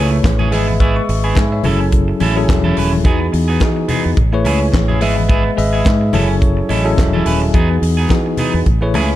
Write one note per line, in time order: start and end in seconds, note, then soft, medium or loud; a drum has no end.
0.00 0.20 C#2 medium
0.00 0.17 A3 medium
0.00 0.43 A3 medium
0.00 0.11 C#4 medium
0.00 0.44 E4 medium
0.00 0.44 G#4 medium
0.00 0.44 B4 medium
0.00 0.44 C#5 loud
0.11 muted clean electric guitar stroke soft
0.23 0.53 A1 medium
0.23 muted clean electric guitar stroke soft
0.23 kick loud
0.23 snare loud
0.23 clap medium
0.23 closed hi-hat medium
0.23 high conga medium
0.39 0.51 A3 medium
0.39 0.53 C#4 medium
0.39 0.53 G#4 medium
0.39 high conga medium
0.51 0.99 G#1 loud
0.51 1.01 G#3 medium
0.51 0.73 B3 medium
0.51 0.68 E4 medium
0.51 1.02 G#4 medium
0.51 0.66 G#4 medium
0.51 1.02 B4 medium
0.51 0.80 D#5 medium
0.51 0.80 E5 medium
0.51 open hi-hat medium
0.68 muted clean electric guitar stroke soft
0.68 high conga medium
0.80 1.01 B3 medium
0.80 0.97 E4 medium
0.80 0.95 G#4 medium
0.80 0.95 C#6 soft
0.80 0.95 E6 medium
0.80 kick loud
0.80 closed hi-hat medium
0.96 1.22 C#6 medium
0.96 muted clean electric guitar stroke soft
1.09 1.32 G#1 medium
1.09 muted clean electric guitar stroke soft
1.09 open hi-hat medium
1.24 1.39 B3 soft
1.24 1.39 E4 medium
1.24 1.38 G#4 medium
1.24 1.35 G#5 soft
1.24 1.35 B5 medium
1.35 1.60 G#2 medium
1.35 1.51 E5 medium
1.35 1.51 G#5 medium
1.35 kick loud
1.35 snare loud
1.35 clap loud
1.35 closed hi-hat medium
1.35 high conga medium
1.52 1.79 C#5 soft
1.52 1.79 E5 medium
1.52 muted clean electric guitar stroke soft
1.64 2.12 F#1 medium
1.64 2.26 F#3 medium
1.64 2.26 C#4 medium
1.64 1.85 C#4 medium
1.64 2.26 E4 medium
1.64 1.80 E4 medium
1.64 2.26 G#4 medium
1.64 2.27 A4 medium
1.64 1.79 A4 loud
1.64 open hi-hat medium
1.64 muted conga medium
1.64 low conga medium
1.80 muted clean electric guitar stroke soft
1.92 kick medium
1.92 closed hi-hat medium
1.92 low conga medium
2.08 muted clean electric guitar stroke soft
2.20 2.44 A1 loud
2.20 2.42 C#4 medium
2.20 2.37 E4 medium
2.20 2.35 A4 loud
2.20 open hi-hat medium
2.20 muted conga medium
2.36 2.97 F#3 medium
2.36 2.97 C#4 medium
2.36 2.97 E4 medium
2.36 2.97 G#4 medium
2.36 2.97 A4 medium
2.36 muted clean electric guitar stroke soft
2.48 2.72 E1 medium
2.48 muted clean electric guitar stroke soft
2.48 kick loud
2.48 snare loud
2.48 clap medium
2.48 closed hi-hat medium
2.48 high conga medium
2.64 2.76 C#4 medium
2.64 2.77 E4 medium
2.64 2.78 A4 medium
2.64 high conga medium
2.77 3.01 D#1 medium
2.77 2.94 C#4 medium
2.77 2.93 E4 medium
2.77 2.92 B4 medium
2.77 open hi-hat medium
2.93 muted clean electric guitar stroke soft
2.93 high conga medium
3.04 3.28 E2 loud
3.04 3.54 E3 medium
3.04 3.26 B3 medium
3.04 3.55 B3 medium
3.04 3.55 D#4 medium
3.04 3.20 D#4 medium
3.04 3.55 F#4 medium
3.04 3.55 G#4 medium
3.04 3.19 G#4 medium
3.04 kick loud
3.04 closed hi-hat medium
3.20 muted clean electric guitar stroke soft
3.32 3.57 E2 medium
3.32 muted clean electric guitar stroke medium
3.32 open hi-hat medium
3.48 3.63 B3 medium
3.48 3.63 D#4 medium
3.48 3.63 G#4 medium
3.60 4.17 E3 medium
3.60 3.85 E3 loud
3.60 4.17 B3 medium
3.60 4.17 D#4 medium
3.60 4.17 F#4 medium
3.60 4.17 G#4 medium
3.60 kick loud
3.60 snare loud
3.60 clap medium
3.60 closed hi-hat medium
3.60 high conga medium
3.76 muted clean electric guitar stroke soft
3.88 4.10 B3 medium
3.88 4.04 D#4 medium
3.88 4.03 G#4 medium
3.88 open hi-hat medium
3.88 muted conga medium
3.88 low conga medium
4.04 4.16 E2 medium
4.04 muted clean electric guitar stroke soft
4.17 4.46 A1 loud
4.17 kick medium
4.17 closed hi-hat medium
4.17 muted conga soft
4.17 low conga medium
4.33 4.93 A3 medium
4.33 4.93 E4 medium
4.33 4.94 G#4 medium
4.33 4.94 B4 medium
4.33 4.94 C#5 loud
4.33 muted clean electric guitar stroke soft
4.45 4.69 C#2 loud
4.45 4.66 C#4 medium
4.45 4.60 E4 medium
4.45 4.59 G#4 medium
4.45 open hi-hat medium
4.45 muted conga medium
4.60 muted clean electric guitar stroke soft
4.72 5.02 A1 medium
4.72 muted clean electric guitar stroke soft
4.72 kick loud
4.72 snare loud
4.72 clap medium
4.72 closed hi-hat medium
4.72 high conga medium
4.88 5.00 C#4 medium
4.88 5.00 E4 medium
4.88 5.01 G#4 medium
4.88 high conga medium
5.01 5.49 G#1 medium
5.01 5.51 G#3 medium
5.01 5.22 B3 medium
5.01 5.17 E4 medium
5.01 5.51 G#4 medium
5.01 5.15 G#4 medium
5.01 5.51 B4 medium
5.01 5.52 D#5 medium
5.01 5.52 E5 medium
5.01 open hi-hat medium
5.17 muted clean electric guitar stroke soft
5.17 high conga medium
5.29 5.50 B3 medium
5.29 5.44 E4 medium
5.29 5.43 G#4 medium
5.29 kick loud
5.29 closed hi-hat medium
5.45 muted clean electric guitar stroke soft
5.57 5.81 G#1 loud
5.57 6.13 G#3 medium
5.57 6.13 G#4 medium
5.57 6.14 B4 medium
5.57 6.14 D#5 medium
5.57 6.14 E5 loud
5.57 muted clean electric guitar stroke soft
5.57 open hi-hat medium
5.73 5.88 B3 medium
5.73 5.88 E4 medium
5.73 5.87 G#4 medium
5.85 6.09 G#2 loud
5.85 kick loud
5.85 snare loud
5.85 clap medium
5.85 closed hi-hat medium
5.85 high conga medium
6.01 muted clean electric guitar stroke soft
6.13 6.61 F#1 medium
6.13 6.75 F#3 medium
6.13 6.75 C#4 medium
6.13 6.35 C#4 medium
6.13 6.75 E4 medium
6.13 6.29 E4 medium
6.13 6.75 G#4 medium
6.13 6.76 A4 loud
6.13 6.28 A4 loud
6.13 open hi-hat medium
6.13 muted conga medium
6.13 low conga medium
6.29 6.40 C#5 medium
6.29 muted clean electric guitar stroke soft
6.41 6.68 C#5 medium
6.41 kick medium
6.41 closed hi-hat soft
6.41 muted conga soft
6.41 low conga medium
6.57 muted clean electric guitar stroke soft
6.69 6.93 A1 medium
6.69 6.91 C#4 medium
6.69 6.85 E4 medium
6.69 6.84 A4 medium
6.69 6.84 D#5 medium
6.69 open hi-hat medium
6.69 muted conga medium
6.84 7.45 F#3 loud
6.84 7.46 C#4 medium
6.84 7.46 E4 medium
6.84 7.46 G#4 medium
6.84 7.46 A4 loud
6.84 6.97 E5 medium
6.84 muted clean electric guitar stroke soft
6.97 7.22 E1 medium
6.97 7.24 E5 medium
6.97 muted clean electric guitar stroke soft
6.97 kick loud
6.97 snare loud
6.97 clap medium
6.97 closed hi-hat medium
6.97 high conga medium
7.13 7.24 C#4 medium
7.13 7.25 E4 medium
7.13 7.26 A4 medium
7.13 high conga medium
7.25 7.49 D#1 medium
7.25 7.43 C#4 medium
7.25 7.42 E4 medium
7.25 7.41 B4 medium
7.25 7.52 G#5 medium
7.25 open hi-hat medium
7.42 muted clean electric guitar stroke medium
7.53 7.78 E2 loud
7.53 8.03 E3 medium
7.53 7.75 B3 medium
7.53 8.04 B3 medium
7.53 8.04 D#4 medium
7.53 7.70 D#4 loud
7.53 8.04 F#4 medium
7.53 8.04 G#4 medium
7.53 7.68 G#4 medium
7.53 kick loud
7.53 closed hi-hat medium
7.70 muted clean electric guitar stroke soft
7.82 8.05 E2 medium
7.82 muted clean electric guitar stroke soft
7.82 open hi-hat medium
7.97 8.13 B3 medium
7.97 8.12 D#4 medium
7.97 8.12 G#4 medium
8.09 8.66 E3 medium
8.09 8.34 E3 medium
8.09 8.66 B3 medium
8.09 8.66 D#4 medium
8.09 8.67 F#4 medium
8.09 8.67 G#4 medium
8.09 kick loud
8.09 snare loud
8.09 clap medium
8.09 closed hi-hat medium
8.09 high conga medium
8.26 muted clean electric guitar stroke soft
8.37 8.59 B3 medium
8.37 8.54 D#4 medium
8.37 8.53 G#4 medium
8.37 open hi-hat medium
8.37 muted conga medium
8.37 low conga medium
8.54 8.64 E2 medium
8.54 muted clean electric guitar stroke medium
8.66 8.95 A1 medium
8.66 kick medium
8.66 closed hi-hat medium
8.66 low conga medium
8.81 9.16 A3 medium
8.81 9.16 E4 medium
8.81 9.16 G#4 medium
8.81 9.16 B4 medium
8.81 9.16 C#5 medium
8.81 muted clean electric guitar stroke soft
8.94 9.16 C#2 medium
8.94 9.15 C#4 medium
8.94 9.11 E4 medium
8.94 9.09 G#4 loud
8.94 open hi-hat medium
8.94 muted conga medium
9.10 muted clean electric guitar stroke soft